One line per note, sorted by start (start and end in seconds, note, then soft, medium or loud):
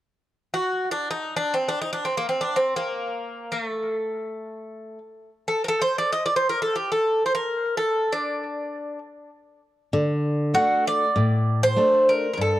0.54 0.91 F#4 medium
0.91 1.10 D4 medium
1.11 1.36 D#4 medium
1.36 1.53 D4 medium
1.54 1.69 C4 medium
1.69 1.81 D4 medium
1.81 1.92 D#4 medium
1.93 2.05 D4 medium
2.05 2.17 C4 medium
2.17 2.28 A#3 medium
2.29 2.42 C4 medium
2.41 2.57 D4 medium
2.56 2.76 C4 medium
2.76 3.52 A#3 medium
3.52 3.63 A#3 medium
3.63 4.98 A3 medium
5.48 5.64 A4 medium
5.64 5.68 A#4 medium
5.68 5.81 A4 medium
5.82 5.98 C5 medium
5.98 6.12 D5 medium
6.12 6.25 D#5 medium
6.26 6.36 D5 medium
6.36 6.49 C5 medium
6.49 6.62 A#4 medium
6.62 6.75 A4 medium
6.76 6.90 G4 medium
6.92 7.25 A4 medium
7.26 7.32 C5 medium
7.35 7.75 A#4 medium
7.77 8.12 A4 medium
8.12 8.98 D4 medium
9.93 10.53 D3 medium
10.54 11.03 A3 soft
10.54 11.04 D4 soft
10.54 10.83 F#4 medium
10.54 11.04 F#4 soft
10.87 11.63 D5 medium
11.16 11.76 A2 medium
11.63 12.10 C5 medium
11.76 12.26 A3 soft
11.76 12.27 D4 soft
11.76 12.27 F#4 soft
12.09 12.32 A#4 medium
12.33 12.40 A#4 medium
12.37 12.60 G2 medium
12.37 12.60 A4 medium